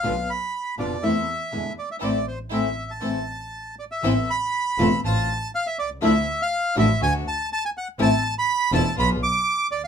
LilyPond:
<<
  \new Staff \with { instrumentName = "Bandoneon" } { \time 4/4 \key a \minor \tempo 4 = 121 f''8 b''4 d''8 e''4. d''16 e''16 | d''8 c''8 e''8. a''4.~ a''16 d''16 e''16~ | e''8 b''4. a''4 f''16 e''16 d''8 | e''8. f''8. e''8 gis''8 a''8 a''16 gis''16 fis''8 |
a''8. b''8. a''8 b''8 d'''4 d''16 f''16 | }
  \new Staff \with { instrumentName = "String section" } { \time 4/4 \key a \minor <d' f' b'>8 r4 <d' f' b'>8 <c' e' a'>8 r8 <d' e' gis'>8 r8 | <c' e' a'>8 r8 <c' e' a'>8 r8 <c' e' a'>8 r4. | <b c' a'>8 r4 <b c' a'>8 <a c' f'>8 r4. | <f d' e'>8 r4 <f d' e'>8 <a d' fis'>8 r4. |
<a c' e'>8 r4 <a c' e'>8 <b d' f'>8 r4. | }
  \new Staff \with { instrumentName = "Nylon-string guitar" } { \time 4/4 \key a \minor <b, d b d' f'>8 r4 <b, d b d' f'>8 <e a c' e'>8 r8 <b, d gis b e'>8 r8 | <e a c'>8 r8 <e a c'>8 r8 <e a c'>8 r4. | <e b c' e'>8 r4 <f a c' f'>8 r2 | <d f a d' e'>8 r4 <d a d' fis'>8 r2 |
<e a c' e'>8 r4 <b, d b d' f'>8 r2 | }
  \new Staff \with { instrumentName = "Double bass" } { \clef bass \time 4/4 \key a \minor b,,8 r4 f,,8 e,8 r8 e,8 r8 | a,,8 r8 a,,8 r8 a,,8 r4. | a,,8 r4 e,,8 a,,8 r4 c,8 | d,8 r4 a,,8 d,8 r4. |
a,,8 r4 e,,8 b,,8 r4 d,8 | }
>>